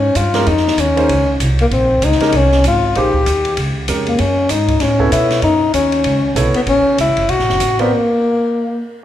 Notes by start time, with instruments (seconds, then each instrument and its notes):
Already playing: upright bass G#2, tenor saxophone C#4
0.15 upright bass G2, tenor saxophone F4, hi-hat pedal, ride
0.34 upright piano G#3 C#4 G4 A#4, snare, ride
0.46 upright bass F2, tenor saxophone D#4, ride
0.57 snare
0.67 snare
0.77 upright bass D#2, tenor saxophone C#4, hi-hat pedal, ride
0.96 upright piano A#3 D#4 G#4 C5, ride
1.09 upright bass C#2, ride
1.40 upright bass C2, hi-hat pedal, ride
1.59 tenor saxophone A#3, ride
1.71 upright bass A#1, tenor saxophone C4, ride
2.02 upright bass C#2, tenor saxophone D#4, hi-hat pedal, ride
2.12 snare
2.20 upright piano G#3 C#4 G4 A#4, muted upright bass stroke, snare, ride
2.32 upright bass C2, tenor saxophone C#4, ride
2.52 snare
2.64 upright bass G#1, tenor saxophone F4, hi-hat pedal, ride
2.95 upright bass A#1, upright piano A#3 D#4 G#4 C5, tenor saxophone G4, ride
3.14 kick
3.26 upright bass D#2, hi-hat pedal, ride
3.45 ride
3.57 upright bass C#2, ride
3.88 upright bass F2, upright piano G#3 C#4 G4 A#4, hi-hat pedal, ride
4.07 tenor saxophone A#3, ride
4.19 upright bass F#2, tenor saxophone C#4, ride
4.49 upright bass G#2, tenor saxophone D#4, hi-hat pedal, ride
4.68 kick, ride
4.80 upright bass A2, tenor saxophone C#4, snare, ride
4.99 upright piano B3 E4 A4 C#5, kick
5.12 upright bass B2, tenor saxophone E4, hi-hat pedal, ride
5.30 snare, ride
5.42 upright bass F#2, tenor saxophone D#4, ride
5.73 upright bass D#2, tenor saxophone C#4, hi-hat pedal, ride
5.92 ride
6.04 upright bass C#2, ride
6.35 upright bass B1, upright piano B3 E4 A4 C#5, hi-hat pedal, ride
6.54 tenor saxophone B3, muted upright bass stroke, ride
6.66 upright bass A1, tenor saxophone C#4, ride
6.85 muted upright bass stroke
6.97 upright bass C#2, tenor saxophone E4, hi-hat pedal, ride
7.08 upright bass A1
7.17 upright bass F#1, ride
7.28 upright bass B1, tenor saxophone F#4, ride
7.39 upright bass A1, snare
7.49 upright bass F#1, snare
7.60 upright bass A1, hi-hat pedal, ride
7.79 tenor saxophone B3, upright piano C4 F4 A#4 D5, ride
7.94 tenor saxophone A#3